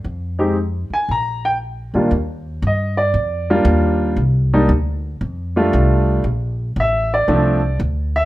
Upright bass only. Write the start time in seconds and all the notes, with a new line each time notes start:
0.04 F2
0.90 muted upright bass stroke
1.09 A#1
1.94 A#2
2.11 D#2
2.62 G2
3.14 F2
3.65 D#2
4.16 C2
4.69 D2
5.21 F2
5.73 C2
6.24 A#1
6.76 A1
7.28 C2
7.79 D2